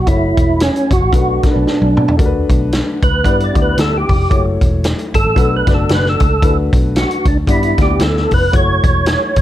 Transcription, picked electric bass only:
0, 0, Header, 1, 2, 480
1, 0, Start_track
1, 0, Tempo, 529101
1, 64, Time_signature, 4, 2, 24, 8
1, 8542, End_track
2, 0, Start_track
2, 0, Title_t, "Picked electric bass"
2, 0, Program_c, 0, 34
2, 59, Note_on_c, 0, 30, 106
2, 291, Note_off_c, 0, 30, 0
2, 338, Note_on_c, 0, 28, 83
2, 622, Note_off_c, 0, 28, 0
2, 822, Note_on_c, 0, 30, 82
2, 906, Note_off_c, 0, 30, 0
2, 926, Note_on_c, 0, 33, 74
2, 1009, Note_off_c, 0, 33, 0
2, 1019, Note_on_c, 0, 35, 106
2, 1252, Note_off_c, 0, 35, 0
2, 1415, Note_on_c, 0, 35, 86
2, 1494, Note_off_c, 0, 35, 0
2, 1648, Note_on_c, 0, 35, 83
2, 1762, Note_off_c, 0, 35, 0
2, 1796, Note_on_c, 0, 47, 100
2, 1958, Note_off_c, 0, 47, 0
2, 1986, Note_on_c, 0, 38, 93
2, 2217, Note_off_c, 0, 38, 0
2, 2263, Note_on_c, 0, 35, 86
2, 2546, Note_off_c, 0, 35, 0
2, 2746, Note_on_c, 0, 37, 76
2, 2829, Note_off_c, 0, 37, 0
2, 2850, Note_on_c, 0, 38, 81
2, 2932, Note_off_c, 0, 38, 0
2, 2940, Note_on_c, 0, 43, 88
2, 3173, Note_off_c, 0, 43, 0
2, 3223, Note_on_c, 0, 38, 92
2, 3391, Note_off_c, 0, 38, 0
2, 3425, Note_on_c, 0, 38, 82
2, 3656, Note_off_c, 0, 38, 0
2, 3711, Note_on_c, 0, 29, 100
2, 3876, Note_off_c, 0, 29, 0
2, 3909, Note_on_c, 0, 30, 108
2, 4139, Note_off_c, 0, 30, 0
2, 4188, Note_on_c, 0, 28, 84
2, 4469, Note_off_c, 0, 28, 0
2, 4663, Note_on_c, 0, 31, 78
2, 4748, Note_off_c, 0, 31, 0
2, 4762, Note_on_c, 0, 33, 74
2, 4848, Note_off_c, 0, 33, 0
2, 4864, Note_on_c, 0, 35, 95
2, 5095, Note_off_c, 0, 35, 0
2, 5143, Note_on_c, 0, 30, 91
2, 5311, Note_off_c, 0, 30, 0
2, 5350, Note_on_c, 0, 30, 95
2, 5579, Note_off_c, 0, 30, 0
2, 5632, Note_on_c, 0, 37, 90
2, 5796, Note_off_c, 0, 37, 0
2, 5827, Note_on_c, 0, 38, 110
2, 6057, Note_off_c, 0, 38, 0
2, 6104, Note_on_c, 0, 35, 102
2, 6387, Note_off_c, 0, 35, 0
2, 6581, Note_on_c, 0, 37, 89
2, 6667, Note_off_c, 0, 37, 0
2, 6674, Note_on_c, 0, 38, 82
2, 6763, Note_off_c, 0, 38, 0
2, 6779, Note_on_c, 0, 43, 101
2, 7013, Note_off_c, 0, 43, 0
2, 7058, Note_on_c, 0, 38, 94
2, 7228, Note_off_c, 0, 38, 0
2, 7251, Note_on_c, 0, 38, 92
2, 7488, Note_off_c, 0, 38, 0
2, 7542, Note_on_c, 0, 29, 105
2, 7710, Note_off_c, 0, 29, 0
2, 7738, Note_on_c, 0, 30, 110
2, 7972, Note_off_c, 0, 30, 0
2, 8017, Note_on_c, 0, 28, 100
2, 8302, Note_off_c, 0, 28, 0
2, 8495, Note_on_c, 0, 30, 88
2, 8542, Note_off_c, 0, 30, 0
2, 8542, End_track
0, 0, End_of_file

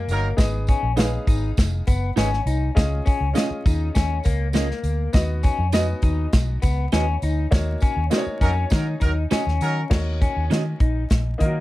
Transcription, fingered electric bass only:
0, 0, Header, 1, 3, 480
1, 0, Start_track
1, 0, Key_signature, -6, "minor"
1, 0, Tempo, 595238
1, 314, Time_signature, 4, 2, 24, 8
1, 9357, End_track
2, 0, Start_track
2, 0, Title_t, "Fingered electric bass"
2, 0, Program_c, 0, 33
2, 62, Note_on_c, 0, 31, 80
2, 248, Note_off_c, 0, 31, 0
2, 306, Note_on_c, 0, 32, 114
2, 581, Note_off_c, 0, 32, 0
2, 667, Note_on_c, 0, 34, 93
2, 942, Note_off_c, 0, 34, 0
2, 1027, Note_on_c, 0, 32, 89
2, 1211, Note_off_c, 0, 32, 0
2, 1273, Note_on_c, 0, 29, 84
2, 1454, Note_off_c, 0, 29, 0
2, 1511, Note_on_c, 0, 30, 79
2, 1694, Note_off_c, 0, 30, 0
2, 1746, Note_on_c, 0, 32, 81
2, 1930, Note_off_c, 0, 32, 0
2, 1981, Note_on_c, 0, 36, 88
2, 2167, Note_off_c, 0, 36, 0
2, 2230, Note_on_c, 0, 37, 108
2, 2413, Note_off_c, 0, 37, 0
2, 2585, Note_on_c, 0, 37, 105
2, 2679, Note_off_c, 0, 37, 0
2, 2949, Note_on_c, 0, 39, 85
2, 3132, Note_off_c, 0, 39, 0
2, 3190, Note_on_c, 0, 39, 96
2, 3373, Note_off_c, 0, 39, 0
2, 3433, Note_on_c, 0, 37, 96
2, 3796, Note_off_c, 0, 37, 0
2, 3897, Note_on_c, 0, 38, 80
2, 4084, Note_off_c, 0, 38, 0
2, 4143, Note_on_c, 0, 39, 109
2, 4418, Note_off_c, 0, 39, 0
2, 4503, Note_on_c, 0, 41, 95
2, 4778, Note_off_c, 0, 41, 0
2, 4859, Note_on_c, 0, 39, 81
2, 5045, Note_off_c, 0, 39, 0
2, 5109, Note_on_c, 0, 35, 101
2, 5292, Note_off_c, 0, 35, 0
2, 5348, Note_on_c, 0, 37, 90
2, 5530, Note_off_c, 0, 37, 0
2, 5584, Note_on_c, 0, 39, 110
2, 5768, Note_off_c, 0, 39, 0
2, 5825, Note_on_c, 0, 38, 92
2, 6009, Note_off_c, 0, 38, 0
2, 6062, Note_on_c, 0, 39, 111
2, 6247, Note_off_c, 0, 39, 0
2, 6423, Note_on_c, 0, 39, 105
2, 6517, Note_off_c, 0, 39, 0
2, 6783, Note_on_c, 0, 41, 88
2, 6968, Note_off_c, 0, 41, 0
2, 7030, Note_on_c, 0, 51, 93
2, 7212, Note_off_c, 0, 51, 0
2, 7269, Note_on_c, 0, 39, 87
2, 7452, Note_off_c, 0, 39, 0
2, 7633, Note_on_c, 0, 39, 83
2, 7723, Note_off_c, 0, 39, 0
2, 7751, Note_on_c, 0, 51, 90
2, 7933, Note_off_c, 0, 51, 0
2, 7991, Note_on_c, 0, 39, 98
2, 8264, Note_off_c, 0, 39, 0
2, 8357, Note_on_c, 0, 39, 84
2, 8447, Note_off_c, 0, 39, 0
2, 8471, Note_on_c, 0, 51, 85
2, 8654, Note_off_c, 0, 51, 0
2, 8713, Note_on_c, 0, 34, 85
2, 8895, Note_off_c, 0, 34, 0
2, 8958, Note_on_c, 0, 34, 84
2, 9139, Note_off_c, 0, 34, 0
2, 9200, Note_on_c, 0, 51, 94
2, 9357, Note_off_c, 0, 51, 0
2, 9357, End_track
3, 0, Start_track
3, 0, Title_t, "Muted fingered electric bass strokes"
3, 2826, Note_on_c, 9, 29, 48
3, 2907, Note_off_c, 9, 29, 0
3, 6665, Note_on_c, 9, 29, 41
3, 6746, Note_off_c, 9, 29, 0
3, 7513, Note_on_c, 9, 29, 48
3, 7593, Note_off_c, 9, 29, 0
3, 9357, End_track
0, 0, End_of_file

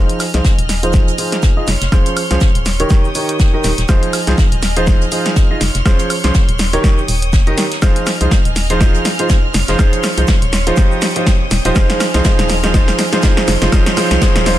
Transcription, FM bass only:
0, 0, Header, 1, 2, 480
1, 0, Start_track
1, 0, Key_signature, -4, "minor"
1, 0, Tempo, 491803
1, 1876, Time_signature, 4, 2, 24, 8
1, 14236, End_track
2, 0, Start_track
2, 0, Title_t, "FM bass"
2, 0, Program_c, 0, 39
2, 332, Note_on_c, 0, 36, 96
2, 399, Note_off_c, 0, 36, 0
2, 572, Note_on_c, 0, 27, 91
2, 1096, Note_off_c, 0, 27, 0
2, 1636, Note_on_c, 0, 29, 96
2, 1723, Note_off_c, 0, 29, 0
2, 1773, Note_on_c, 0, 29, 85
2, 1839, Note_off_c, 0, 29, 0
2, 1875, Note_on_c, 0, 29, 94
2, 1963, Note_off_c, 0, 29, 0
2, 2253, Note_on_c, 0, 36, 97
2, 2319, Note_off_c, 0, 36, 0
2, 2492, Note_on_c, 0, 27, 99
2, 2776, Note_off_c, 0, 27, 0
2, 3556, Note_on_c, 0, 27, 97
2, 3643, Note_off_c, 0, 27, 0
2, 3691, Note_on_c, 0, 27, 88
2, 3758, Note_off_c, 0, 27, 0
2, 3796, Note_on_c, 0, 29, 102
2, 3883, Note_off_c, 0, 29, 0
2, 4172, Note_on_c, 0, 36, 100
2, 4239, Note_off_c, 0, 36, 0
2, 4411, Note_on_c, 0, 27, 98
2, 4936, Note_off_c, 0, 27, 0
2, 5475, Note_on_c, 0, 29, 96
2, 5563, Note_off_c, 0, 29, 0
2, 5612, Note_on_c, 0, 29, 91
2, 5678, Note_off_c, 0, 29, 0
2, 5715, Note_on_c, 0, 29, 97
2, 5803, Note_off_c, 0, 29, 0
2, 6091, Note_on_c, 0, 36, 98
2, 6158, Note_off_c, 0, 36, 0
2, 6332, Note_on_c, 0, 27, 98
2, 6616, Note_off_c, 0, 27, 0
2, 6915, Note_on_c, 0, 27, 101
2, 7292, Note_on_c, 0, 31, 93
2, 7306, Note_off_c, 0, 27, 0
2, 7358, Note_off_c, 0, 31, 0
2, 7635, Note_on_c, 0, 29, 99
2, 7723, Note_off_c, 0, 29, 0
2, 8012, Note_on_c, 0, 36, 99
2, 8078, Note_off_c, 0, 36, 0
2, 8252, Note_on_c, 0, 27, 94
2, 8776, Note_off_c, 0, 27, 0
2, 9315, Note_on_c, 0, 29, 95
2, 9403, Note_off_c, 0, 29, 0
2, 9452, Note_on_c, 0, 29, 83
2, 9519, Note_off_c, 0, 29, 0
2, 9555, Note_on_c, 0, 29, 97
2, 9643, Note_off_c, 0, 29, 0
2, 9931, Note_on_c, 0, 36, 96
2, 9998, Note_off_c, 0, 36, 0
2, 10172, Note_on_c, 0, 27, 100
2, 10456, Note_off_c, 0, 27, 0
2, 11236, Note_on_c, 0, 27, 94
2, 11323, Note_off_c, 0, 27, 0
2, 11371, Note_on_c, 0, 27, 89
2, 11438, Note_off_c, 0, 27, 0
2, 11475, Note_on_c, 0, 29, 103
2, 11563, Note_off_c, 0, 29, 0
2, 11852, Note_on_c, 0, 36, 100
2, 11918, Note_off_c, 0, 36, 0
2, 12090, Note_on_c, 0, 27, 95
2, 12615, Note_off_c, 0, 27, 0
2, 13154, Note_on_c, 0, 29, 94
2, 13242, Note_off_c, 0, 29, 0
2, 13291, Note_on_c, 0, 29, 89
2, 13358, Note_off_c, 0, 29, 0
2, 13395, Note_on_c, 0, 29, 102
2, 13483, Note_off_c, 0, 29, 0
2, 13770, Note_on_c, 0, 36, 98
2, 13838, Note_off_c, 0, 36, 0
2, 14011, Note_on_c, 0, 27, 98
2, 14236, Note_off_c, 0, 27, 0
2, 14236, End_track
0, 0, End_of_file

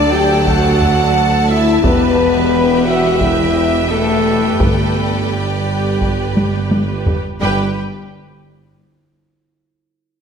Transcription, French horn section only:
0, 0, Header, 1, 2, 480
1, 0, Start_track
1, 0, Key_signature, 1, "major"
1, 0, Tempo, 686499
1, 1281, Time_signature, 4, 2, 24, 8
1, 2726, Tempo, 703400
1, 5126, Tempo, 690449
1, 7069, End_track
2, 0, Start_track
2, 0, Title_t, "French horn section"
2, 0, Program_c, 0, 60
2, 0, Note_on_c, 0, 62, 103
2, 75, Note_off_c, 0, 62, 0
2, 89, Note_on_c, 0, 67, 96
2, 319, Note_on_c, 0, 66, 91
2, 326, Note_off_c, 0, 67, 0
2, 925, Note_off_c, 0, 66, 0
2, 1043, Note_on_c, 0, 64, 98
2, 1276, Note_on_c, 0, 59, 89
2, 1277, Note_off_c, 0, 64, 0
2, 1995, Note_on_c, 0, 66, 82
2, 1999, Note_off_c, 0, 59, 0
2, 2235, Note_on_c, 0, 64, 71
2, 2239, Note_off_c, 0, 66, 0
2, 2722, Note_off_c, 0, 64, 0
2, 2723, Note_on_c, 0, 57, 78
2, 3193, Note_off_c, 0, 57, 0
2, 3201, Note_on_c, 0, 57, 58
2, 3676, Note_off_c, 0, 57, 0
2, 3688, Note_on_c, 0, 55, 50
2, 4647, Note_off_c, 0, 55, 0
2, 5116, Note_on_c, 0, 55, 71
2, 5332, Note_off_c, 0, 55, 0
2, 7069, End_track
0, 0, End_of_file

